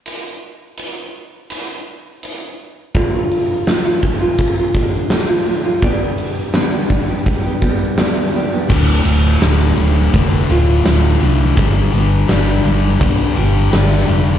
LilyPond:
<<
  \new Staff \with { instrumentName = "Steel-string acoustic guitar" } { \time 4/4 \key d \dorian \tempo 4 = 83 r1 | <d, a, d a f'>16 <d a f'>8. <d, a, d a f'>16 <d a f'>8 <d a f'>8 <d a f'>16 <a, d a f'>8 <d, a, d a f'>16 <d a f'>16 <a, d a f'>16 <d a f'>16 | <g, d g b d' g'>16 <g b d' g'>8. <g, d g b d' g'>16 <g b d' g'>8 <g b d' g'>8 <g b d' g'>16 <g b d' g'>8 <g, d g b d' g'>16 <g b d' g'>16 <g b d' g'>16 <g b d' g'>16 | d,8 d8 a8 a,8 d8 f'8 a8 a,8 |
g,8 b8 d'8 g8 b8 g'8 d'8 g8 | }
  \new Staff \with { instrumentName = "Distorted electric guitar" } { \clef bass \time 4/4 \key d \dorian r1 | r1 | r1 | <d, a, d>8 <d, a, d>8 <d, a, d>8 <d, a, d>8 <d, a, d>8 <d, a, d>8 <d, a, d>8 <d, a, d>8 |
<g, d g>8 <g, d g>8 <g, d g>8 <g, d g>8 <g, d g>8 <g, d g>8 <g, d g>8 <g, d g>8 | }
  \new Staff \with { instrumentName = "Fingered electric bass" } { \clef bass \time 4/4 \key d \dorian r1 | r1 | r1 | d,,8 d,,8 d,,8 d,,8 f,,8 d,,8 d,,8 c,8 |
g,,8 g,,8 g,,8 g,,8 b,,8 g,,8 g,,8 f,,8 | }
  \new DrumStaff \with { instrumentName = "Drums" } \drummode { \time 4/4 hh4 hh4 hh4 hh4 | <hho bd>8 hho8 <hho sn>8 <hho bd>8 <hho bd>8 <hho bd>8 <hho sn>8 hho8 | <hho bd>8 hho8 <hho sn>8 <hho bd>8 <hho bd>8 <hho bd>8 <hho sn>8 hho8 | <cymc bd>8 hh8 <hh sn>8 hh8 <hh bd>8 hh8 <hh sn>8 hh8 |
<hh bd>8 hh8 <hh sn>8 hh8 <hh bd>8 hh8 <hh sn>8 hh8 | }
>>